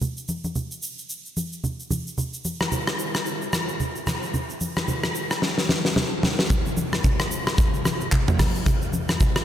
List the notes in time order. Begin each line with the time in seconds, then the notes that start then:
0.01 low conga, shaker
0.17 shaker
0.28 high conga, shaker
0.44 high conga, shaker
0.55 low conga, shaker
0.71 shaker
0.83 shaker
0.98 shaker
1.10 shaker
1.26 shaker
1.37 high conga, shaker
1.52 shaker
1.64 low conga, shaker
1.80 shaker
1.91 high conga, low conga, shaker
2.07 shaker
2.18 low conga, shaker
2.34 shaker
2.45 high conga, shaker
2.60 cross-stick, high conga, shaker
2.72 low conga, shaker
2.87 cross-stick, shaker
2.99 shaker
3.15 cross-stick, shaker
3.26 shaker
3.42 shaker
3.53 cross-stick, high conga, shaker
3.68 shaker
3.80 low conga, shaker
3.96 shaker
4.07 cross-stick, high conga, low conga, shaker
4.23 shaker
4.34 low conga, shaker
4.50 shaker
4.61 high conga, shaker
4.77 cross-stick, high conga, shaker
4.88 low conga, shaker
5.04 cross-stick, high conga, shaker
5.15 shaker
5.31 cross-stick, shaker
5.42 snare
5.58 snare
5.69 snare, high conga
5.85 snare
5.96 snare, low conga
6.23 snare, high conga, low conga
6.39 snare
6.50 kick, low conga, shaker
6.66 shaker
6.77 high conga, shaker
6.93 cross-stick, high conga, shaker
7.04 kick, low conga, shaker
7.20 cross-stick, shaker
7.31 shaker
7.47 cross-stick, shaker
7.58 kick, shaker
7.74 shaker
7.85 cross-stick, high conga, shaker
8.01 shaker
8.12 kick, clap, low conga, shaker
8.28 mid tom, shaker
8.39 kick, cross-stick, open hi-hat, high conga, low conga, shaker
8.55 shaker
8.66 kick, hi-hat pedal, low conga, shaker
8.82 shaker
8.93 high conga, shaker
9.09 cross-stick, high conga, shaker
9.20 kick, low conga, shaker
9.36 cross-stick, shaker